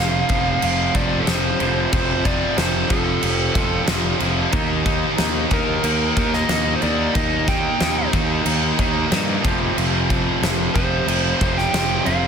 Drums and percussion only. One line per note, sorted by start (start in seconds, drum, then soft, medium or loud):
0.29 kick medium
0.29 crash medium
0.62 crash medium
0.95 kick medium
0.95 crash medium
1.27 snare loud
1.27 crash medium
1.60 crash medium
1.93 kick loud
1.93 crash medium
2.25 kick medium
2.25 crash medium
2.58 snare loud
2.58 crash medium
2.90 kick medium
2.90 crash medium
3.23 crash medium
3.55 kick medium
3.55 crash medium
3.87 snare loud
3.87 crash medium
4.20 crash medium
4.53 kick loud
4.53 crash medium
4.86 kick medium
4.86 crash medium
5.18 snare loud
5.18 crash medium
5.51 kick medium
5.51 crash medium
5.84 crash medium
6.17 kick medium
6.17 crash medium
6.33 snare soft
6.49 snare loud
6.49 crash medium
6.82 crash medium
7.15 kick loud
7.15 crash medium
7.48 kick medium
7.48 snare soft
7.48 crash medium
7.80 snare loud
7.80 crash medium
8.13 kick medium
8.13 crash medium
8.46 crash loud
8.79 kick medium
8.79 crash medium
9.12 snare loud
9.12 crash medium
9.45 kick loud
9.45 crash medium
9.78 crash medium
10.10 kick medium
10.10 crash medium
10.43 snare loud
10.43 crash medium
10.75 kick medium
10.75 crash medium
11.08 crash medium
11.41 kick medium
11.41 crash medium
11.58 snare soft
11.74 snare loud
11.74 crash medium
12.06 crash medium